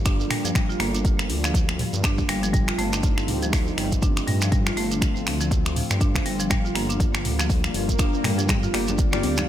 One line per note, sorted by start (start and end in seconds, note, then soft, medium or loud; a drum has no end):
0.00 0.24 G1 loud
0.00 2.50 D3 medium
0.00 2.50 F3 medium
0.00 2.50 G3 medium
0.00 2.50 A#3 medium
0.00 9.49 F4 medium
0.05 0.19 D4 loud
0.05 finger snap loud
0.05 kick loud
0.05 closed hi-hat medium
0.05 shekere medium
0.20 shekere soft
0.31 0.44 G3 medium
0.31 finger snap medium
0.31 mid tom medium
0.31 open hi-hat medium
0.45 0.51 G2 medium
0.45 0.54 F3 medium
0.45 closed hi-hat soft
0.45 shekere medium
0.55 0.68 G3 medium
0.55 finger snap medium
0.55 kick loud
0.55 closed hi-hat medium
0.55 mid tom medium
0.55 shekere medium
0.69 0.75 F4 medium
0.69 shekere soft
0.80 1.31 G1 loud
0.80 0.93 A#3 loud
0.80 finger snap medium
0.80 open hi-hat medium
0.94 1.04 D4 medium
0.94 closed hi-hat soft
0.94 shekere medium
1.05 kick loud
1.05 closed hi-hat medium
1.05 shekere medium
1.19 finger snap loud
1.19 shekere soft
1.29 1.84 D2 medium
1.29 open hi-hat medium
1.44 1.54 F3 medium
1.44 finger snap medium
1.44 closed hi-hat soft
1.44 shekere medium
1.54 kick loud
1.54 closed hi-hat medium
1.54 shekere medium
1.69 finger snap medium
1.69 shekere soft
1.79 mid tom medium
1.79 open hi-hat medium
1.93 2.22 G2 loud
1.93 closed hi-hat soft
1.93 shekere medium
2.04 2.18 D4 loud
2.04 finger snap medium
2.04 kick loud
2.04 closed hi-hat medium
2.04 shekere medium
2.18 kick medium
2.18 shekere soft
2.29 2.72 G1 medium
2.29 2.42 G3 medium
2.29 finger snap medium
2.29 open hi-hat medium
2.43 2.53 F3 medium
2.43 closed hi-hat soft
2.43 shekere medium
2.53 4.50 G3 medium
2.53 2.67 G3 medium
2.53 6.46 A3 medium
2.53 4.50 C4 medium
2.53 4.50 D#4 medium
2.53 kick loud
2.53 closed hi-hat medium
2.53 mid tom loud
2.53 shekere medium
2.67 2.74 F4 medium
2.67 finger snap medium
2.67 shekere soft
2.78 3.29 G1 loud
2.78 2.91 A3 loud
2.78 open hi-hat medium
2.93 3.03 D4 medium
2.93 finger snap medium
2.93 closed hi-hat soft
2.93 shekere medium
3.03 kick loud
3.03 closed hi-hat medium
3.03 shekere medium
3.18 finger snap medium
3.18 shekere soft
3.28 3.71 D2 medium
3.28 mid tom medium
3.28 open hi-hat medium
3.42 3.52 F3 medium
3.42 closed hi-hat soft
3.42 shekere medium
3.53 finger snap medium
3.53 kick loud
3.53 open hi-hat medium
3.53 shekere medium
3.67 shekere soft
3.78 4.21 G1 loud
3.78 finger snap medium
3.78 open hi-hat medium
3.92 kick medium
3.92 closed hi-hat soft
3.92 shekere medium
4.02 4.16 D4 loud
4.02 kick loud
4.02 closed hi-hat medium
4.02 shekere medium
4.16 finger snap medium
4.16 shekere soft
4.27 4.70 G2 medium
4.27 4.40 G3 medium
4.27 mid tom loud
4.27 open hi-hat medium
4.41 4.51 F3 medium
4.41 finger snap medium
4.41 closed hi-hat medium
4.41 shekere medium
4.52 9.49 D3 medium
4.52 9.49 F3 medium
4.52 4.65 G3 medium
4.52 6.49 C4 medium
4.52 kick loud
4.52 closed hi-hat medium
4.52 mid tom loud
4.52 shekere medium
4.66 4.72 F4 medium
4.66 finger snap medium
4.66 shekere soft
4.77 5.28 G1 medium
4.77 4.90 A3 loud
4.77 open hi-hat medium
4.91 5.01 D4 medium
4.91 closed hi-hat soft
4.91 shekere medium
5.02 finger snap medium
5.02 kick loud
5.02 closed hi-hat medium
5.02 shekere medium
5.16 shekere soft
5.26 5.81 D2 medium
5.26 finger snap medium
5.26 open hi-hat medium
5.41 5.50 F3 medium
5.41 closed hi-hat soft
5.41 shekere medium
5.51 kick loud
5.51 closed hi-hat medium
5.51 shekere medium
5.66 finger snap medium
5.66 shekere soft
5.76 mid tom loud
5.76 open hi-hat medium
5.90 6.19 G2 loud
5.90 finger snap medium
5.90 closed hi-hat soft
5.90 shekere medium
6.01 6.15 D4 loud
6.01 kick loud
6.01 closed hi-hat medium
6.01 shekere medium
6.15 finger snap medium
6.15 kick medium
6.15 shekere soft
6.25 6.69 G1 loud
6.25 6.39 G3 medium
6.25 open hi-hat medium
6.40 6.49 F3 medium
6.40 closed hi-hat medium
6.40 shekere medium
6.50 9.49 G3 medium
6.50 6.63 G3 medium
6.50 9.49 A#3 medium
6.50 finger snap medium
6.50 kick loud
6.50 closed hi-hat medium
6.50 mid tom loud
6.50 shekere medium
6.65 6.70 F4 medium
6.65 shekere soft
6.75 7.26 G1 medium
6.75 6.88 A#3 loud
6.75 finger snap medium
6.75 open hi-hat medium
6.89 6.99 D4 medium
6.89 closed hi-hat soft
6.89 shekere medium
7.00 kick loud
7.00 closed hi-hat medium
7.00 shekere medium
7.14 finger snap medium
7.14 shekere soft
7.25 7.68 D2 medium
7.25 mid tom medium
7.25 open hi-hat medium
7.39 7.49 F3 medium
7.39 finger snap medium
7.39 closed hi-hat soft
7.39 shekere medium
7.49 kick loud
7.49 open hi-hat medium
7.49 swell medium
7.49 shekere medium
7.64 finger snap medium
7.64 shekere soft
7.74 8.17 G1 loud
7.74 open hi-hat medium
7.89 kick medium
7.89 closed hi-hat soft
7.89 shekere medium
7.99 8.13 D4 loud
7.99 finger snap medium
7.99 kick loud
7.99 closed hi-hat medium
7.99 shekere medium
8.14 shekere soft
8.24 8.67 G2 medium
8.24 8.37 G3 medium
8.24 finger snap medium
8.24 mid tom loud
8.24 open hi-hat medium
8.38 8.48 F3 medium
8.38 closed hi-hat medium
8.38 shekere medium
8.49 8.62 G3 medium
8.49 finger snap medium
8.49 kick loud
8.49 closed hi-hat medium
8.49 mid tom medium
8.49 high conga medium
8.49 low conga loud
8.49 shekere medium
8.63 8.69 F4 medium
8.63 shekere soft
8.74 9.25 G1 medium
8.74 9.09 A#3 medium
8.74 8.87 A#3 loud
8.74 9.09 F4 medium
8.74 9.09 G4 medium
8.74 9.09 D5 medium
8.74 finger snap medium
8.74 open hi-hat medium
8.87 8.98 D4 medium
8.87 closed hi-hat soft
8.87 low conga loud
8.87 shekere medium
8.98 kick loud
8.98 closed hi-hat medium
8.98 shekere medium
9.13 9.45 A#3 loud
9.13 9.45 F4 medium
9.13 9.45 G4 medium
9.13 9.45 D5 loud
9.13 finger snap medium
9.13 high conga medium
9.13 low conga medium
9.13 shekere soft
9.23 9.49 D2 medium
9.23 open hi-hat medium
9.23 high conga loud
9.37 9.47 F3 medium
9.37 finger snap medium
9.37 closed hi-hat soft
9.37 low conga loud
9.37 shekere medium